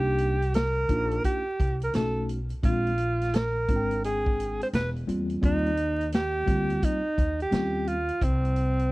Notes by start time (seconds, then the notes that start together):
Already playing: C2 A#3 D4 D#4 G4
0.18 closed hi-hat
0.42 closed hi-hat
0.54 A#4, snare, closed hi-hat
0.89 A#1 A#3 D4 D#4 F4, kick, closed hi-hat
1.11 closed hi-hat
1.24 G4, kick, closed hi-hat
1.60 C2, kick, closed hi-hat
1.81 A#4, closed hi-hat
1.93 B1 A3 C#4 D#4 F#4 A4, snare, closed hi-hat
2.29 closed hi-hat
2.50 closed hi-hat
2.63 A#1 G#3 C4 D4 F4, kick, closed hi-hat
2.87 closed hi-hat
2.98 closed hi-hat
3.21 snare, closed hi-hat
3.34 A#4, snare, closed hi-hat
3.68 G#1 G#3 C4 D4 F4, kick, closed hi-hat
3.76 G5
3.91 closed hi-hat
4.04 G#4, closed hi-hat
4.26 kick
4.40 closed hi-hat
4.61 C5, closed hi-hat
4.73 E1 B4, snare, closed hi-hat
4.96 closed hi-hat
5.07 E2 G3 A#3 C4 F4, closed hi-hat
5.30 closed hi-hat
5.41 D#2 G3 A#3 C4 D#4 F4, kick, closed hi-hat
5.66 closed hi-hat
5.77 closed hi-hat
6.01 closed hi-hat
6.12 G4, snare, closed hi-hat
6.46 D2 G3 A#3 C4 F4, kick, closed hi-hat
6.70 closed hi-hat
6.83 D#4, kick, closed hi-hat
7.18 D#2, kick, closed hi-hat
7.40 G4, closed hi-hat
7.51 D#2 G3 C4 C#4 F4, snare, closed hi-hat
7.87 F4, closed hi-hat
8.08 closed hi-hat
8.21 C2 C4, kick, closed hi-hat
8.45 closed hi-hat
8.56 closed hi-hat
8.79 closed hi-hat